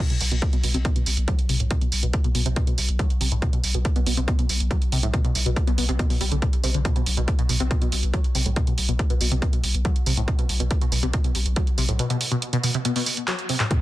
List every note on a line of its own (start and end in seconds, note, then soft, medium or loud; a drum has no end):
0.10 0.16 B2 medium
0.10 closed hi-hat medium
0.21 0.31 B1 loud
0.21 open hi-hat loud
0.31 0.42 B1 medium
0.31 0.36 B2 medium
0.31 closed hi-hat medium
0.42 kick loud
0.42 closed hi-hat medium
0.53 0.63 B1 medium
0.53 0.57 B2 loud
0.53 closed hi-hat medium
0.63 0.74 B1 loud
0.63 0.70 B2 medium
0.63 open hi-hat loud
0.74 0.85 B1 medium
0.74 0.77 C3 loud
0.74 closed hi-hat medium
0.85 0.91 B2 medium
0.85 kick loud
0.85 closed hi-hat medium
0.96 1.02 B2 medium
0.96 closed hi-hat medium
1.06 1.16 B1 loud
1.06 open hi-hat loud
1.17 1.28 B1 medium
1.17 closed hi-hat medium
1.28 1.34 F#3 medium
1.28 kick loud
1.28 closed hi-hat medium
1.39 closed hi-hat medium
1.49 1.59 B1 loud
1.49 1.56 C3 medium
1.49 open hi-hat loud
1.60 1.70 B1 medium
1.60 1.64 A2 medium
1.60 closed hi-hat medium
1.71 1.77 B2 medium
1.71 kick loud
1.71 closed hi-hat medium
1.81 1.88 B2 medium
1.81 closed hi-hat medium
1.92 2.02 B1 loud
1.92 open hi-hat loud
2.03 2.13 B1 medium
2.03 2.07 B2 medium
2.03 closed hi-hat medium
2.13 kick loud
2.13 closed hi-hat medium
2.24 2.34 B1 medium
2.24 2.28 B2 loud
2.24 closed hi-hat medium
2.35 2.45 B1 loud
2.35 2.41 B2 medium
2.35 open hi-hat loud
2.46 2.56 B1 medium
2.46 2.48 C3 loud
2.46 closed hi-hat medium
2.56 2.63 B2 medium
2.56 kick loud
2.56 closed hi-hat medium
2.67 2.73 B2 medium
2.67 closed hi-hat medium
2.78 2.88 B1 loud
2.78 open hi-hat loud
2.89 2.99 B1 medium
2.89 closed hi-hat medium
2.99 3.06 F#3 medium
2.99 kick loud
2.99 closed hi-hat medium
3.10 closed hi-hat medium
3.21 3.31 B1 loud
3.21 3.27 C3 medium
3.21 open hi-hat loud
3.31 3.42 B1 medium
3.31 3.36 A2 medium
3.31 closed hi-hat medium
3.42 3.48 B2 medium
3.42 kick loud
3.42 closed hi-hat medium
3.53 3.59 B2 medium
3.53 closed hi-hat medium
3.63 3.74 B1 loud
3.63 open hi-hat loud
3.74 3.85 B1 medium
3.74 3.79 B2 medium
3.74 closed hi-hat medium
3.85 kick loud
3.85 closed hi-hat medium
3.96 4.06 B1 medium
3.96 4.00 B2 loud
3.96 closed hi-hat medium
4.06 4.17 B1 loud
4.06 4.13 B2 medium
4.06 open hi-hat loud
4.17 4.28 B1 medium
4.17 4.20 C3 loud
4.17 closed hi-hat medium
4.28 4.34 B2 medium
4.28 kick loud
4.28 closed hi-hat medium
4.39 4.45 B2 medium
4.39 closed hi-hat medium
4.49 4.60 B1 loud
4.49 open hi-hat loud
4.60 4.71 B1 medium
4.60 closed hi-hat medium
4.71 4.77 F#3 medium
4.71 kick loud
4.71 closed hi-hat medium
4.82 closed hi-hat medium
4.92 5.03 B1 loud
4.92 4.98 C3 medium
4.92 open hi-hat loud
5.03 5.13 B1 medium
5.03 5.07 A2 medium
5.03 closed hi-hat medium
5.14 5.20 B2 medium
5.14 kick loud
5.14 closed hi-hat medium
5.24 5.31 B2 medium
5.24 closed hi-hat soft
5.35 5.45 B1 loud
5.35 open hi-hat loud
5.46 5.56 B1 medium
5.46 5.50 B2 medium
5.46 closed hi-hat medium
5.56 kick loud
5.56 closed hi-hat medium
5.67 5.77 B1 medium
5.67 5.71 B2 loud
5.67 closed hi-hat medium
5.78 5.88 B1 loud
5.78 5.84 B2 medium
5.78 open hi-hat loud
5.89 5.99 B1 medium
5.89 5.91 C3 loud
5.89 closed hi-hat medium
5.99 6.06 B2 medium
5.99 kick loud
5.99 closed hi-hat medium
6.10 6.16 B2 medium
6.10 open hi-hat medium
6.21 6.31 B1 loud
6.21 6.25 G3 medium
6.21 open hi-hat loud
6.31 6.42 B1 medium
6.31 6.36 D3 medium
6.31 closed hi-hat medium
6.42 6.45 B2 medium
6.42 kick loud
6.42 closed hi-hat medium
6.53 closed hi-hat medium
6.64 6.74 B1 loud
6.64 6.70 C3 loud
6.64 open hi-hat loud
6.74 6.85 B1 medium
6.74 6.78 D3 medium
6.74 closed hi-hat medium
6.85 6.91 B2 medium
6.85 kick loud
6.85 closed hi-hat medium
6.96 7.02 B2 medium
6.96 closed hi-hat soft
7.06 7.17 B1 loud
7.06 open hi-hat loud
7.17 7.28 B1 medium
7.17 7.21 B2 medium
7.17 closed hi-hat soft
7.28 kick loud
7.28 closed hi-hat medium
7.39 7.49 B1 medium
7.39 7.43 B2 loud
7.39 closed hi-hat soft
7.49 7.60 B1 loud
7.49 7.56 B2 medium
7.49 open hi-hat loud
7.60 7.70 B1 medium
7.60 7.63 C3 loud
7.60 closed hi-hat medium
7.71 7.77 B2 medium
7.71 kick loud
7.71 closed hi-hat medium
7.82 7.88 B2 medium
7.82 closed hi-hat medium
7.92 8.02 B1 loud
7.92 open hi-hat loud
8.03 8.13 B1 medium
8.03 closed hi-hat medium
8.14 8.20 F#3 medium
8.14 kick loud
8.14 closed hi-hat medium
8.24 closed hi-hat medium
8.35 8.45 B1 loud
8.35 8.41 C3 medium
8.35 open hi-hat loud
8.46 8.56 B1 medium
8.46 8.50 A2 medium
8.46 closed hi-hat medium
8.56 8.63 B2 medium
8.56 kick loud
8.56 closed hi-hat medium
8.67 8.73 B2 medium
8.67 closed hi-hat soft
8.78 8.88 B1 medium
8.78 open hi-hat loud
8.89 8.99 B1 medium
8.89 8.93 B2 medium
8.89 closed hi-hat soft
8.99 kick loud
8.99 closed hi-hat medium
9.10 9.20 B1 medium
9.10 9.14 B2 loud
9.10 closed hi-hat soft
9.21 9.31 B1 loud
9.21 9.27 B2 medium
9.21 open hi-hat loud
9.31 9.42 B1 medium
9.31 9.34 C3 loud
9.31 closed hi-hat medium
9.42 9.48 B2 medium
9.42 kick loud
9.42 closed hi-hat medium
9.53 9.59 B2 medium
9.53 closed hi-hat soft
9.63 9.74 B1 loud
9.63 open hi-hat loud
9.74 9.85 B1 medium
9.74 closed hi-hat soft
9.85 9.91 F#3 medium
9.85 kick loud
9.85 closed hi-hat medium
9.96 closed hi-hat medium
10.06 10.16 B1 loud
10.06 10.13 C3 medium
10.06 open hi-hat loud
10.17 10.28 B1 medium
10.17 10.21 A2 medium
10.17 closed hi-hat medium
10.28 10.34 B2 medium
10.28 kick loud
10.28 closed hi-hat medium
10.39 10.45 B2 medium
10.39 closed hi-hat medium
10.49 10.59 B1 loud
10.49 open hi-hat loud
10.60 10.70 B1 medium
10.60 10.64 B2 medium
10.60 closed hi-hat medium
10.71 kick loud
10.71 closed hi-hat medium
10.81 10.91 B1 medium
10.81 10.86 B2 loud
10.81 closed hi-hat medium
10.92 11.02 B1 loud
10.92 10.98 B2 medium
10.92 open hi-hat loud
11.03 11.13 B1 medium
11.03 11.05 C3 loud
11.03 closed hi-hat medium
11.13 11.20 B2 medium
11.13 kick loud
11.13 closed hi-hat medium
11.24 11.31 B2 medium
11.24 closed hi-hat medium
11.35 11.45 B1 loud
11.35 open hi-hat loud
11.46 11.56 B1 medium
11.46 closed hi-hat medium
11.56 11.63 F#3 medium
11.56 kick loud
11.56 closed hi-hat medium
11.67 closed hi-hat medium
11.78 11.88 B1 loud
11.78 11.84 C3 medium
11.78 open hi-hat loud
11.89 11.99 B1 medium
11.89 11.93 A2 medium
11.89 closed hi-hat medium
11.99 12.06 B2 medium
11.99 closed hi-hat medium
12.10 12.16 B2 medium
12.10 closed hi-hat medium
12.21 open hi-hat loud
12.32 12.36 B2 medium
12.32 closed hi-hat medium
12.42 closed hi-hat medium
12.53 12.57 B2 loud
12.53 closed hi-hat medium
12.63 12.70 B2 medium
12.63 open hi-hat loud
12.74 12.77 C3 loud
12.74 closed hi-hat medium
12.85 12.91 B2 medium
12.85 closed hi-hat medium
12.96 13.02 B2 medium
12.96 open hi-hat medium
13.06 open hi-hat loud
13.17 closed hi-hat medium
13.28 13.34 F#3 medium
13.28 clap loud
13.28 closed hi-hat medium
13.39 closed hi-hat medium
13.49 13.56 C3 medium
13.49 open hi-hat loud
13.60 13.64 A2 medium
13.60 clap medium
13.60 closed hi-hat medium
13.71 13.77 B2 medium
13.71 kick loud
13.71 closed hi-hat medium
13.71 mid tom medium